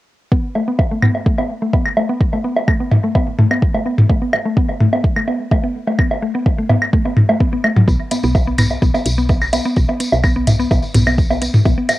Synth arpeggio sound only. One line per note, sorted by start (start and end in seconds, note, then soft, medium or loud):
0.32 0.35 B3 medium
0.55 0.60 A3 medium
0.68 0.70 B3 medium
0.91 0.95 A3 medium
1.03 1.06 B3 medium
1.26 1.31 A3 medium
1.38 1.41 B3 medium
1.62 1.66 A3 medium
1.73 1.76 B3 medium
1.97 2.02 A3 medium
2.09 2.12 B3 medium
2.33 2.37 A3 medium
2.44 2.47 B3 medium
2.68 2.73 A3 medium
2.80 2.83 B3 medium
3.04 3.08 A3 medium
3.15 3.18 B3 medium
3.39 3.43 A3 medium
3.51 3.54 B3 medium
3.75 3.79 A3 medium
3.86 3.89 B3 medium
4.10 4.14 A3 medium
4.22 4.25 B3 medium
4.46 4.50 A3 medium
4.57 4.60 B3 medium
4.81 4.85 A3 medium
4.93 4.96 B3 medium
5.16 5.21 A3 medium
5.28 5.31 B3 medium
5.51 5.56 A3 medium
5.64 5.66 B3 medium
5.87 5.92 A3 medium
5.99 6.02 B3 medium
6.22 6.27 A3 medium
6.35 6.37 B3 medium
6.58 6.62 A3 medium
6.70 6.73 B3 medium
6.93 6.98 A3 medium
7.05 7.08 B3 medium
7.29 7.31 A3 medium
7.40 7.43 B3 medium
7.53 7.55 B3 medium
7.64 7.66 A3 medium
7.76 7.78 F#3 medium
7.88 7.91 B3 medium
8.11 8.14 B3 medium
8.24 8.26 B3 medium
8.47 8.50 B3 medium
8.59 8.62 B3 medium
8.82 8.85 B3 medium
8.94 8.97 B3 medium
9.18 9.21 B3 medium
9.29 9.32 B3 medium
9.53 9.56 B3 medium
9.65 9.68 B3 medium
9.89 9.92 B3 medium
10.00 10.03 B3 medium
10.24 10.27 B3 medium
10.36 10.39 B3 medium
10.60 10.63 B3 medium
10.71 10.74 B3 medium
10.95 10.98 B3 medium
11.07 11.10 B3 medium
11.30 11.33 B3 medium
11.42 11.45 B3 medium
11.65 11.69 B3 medium
11.78 11.81 B3 medium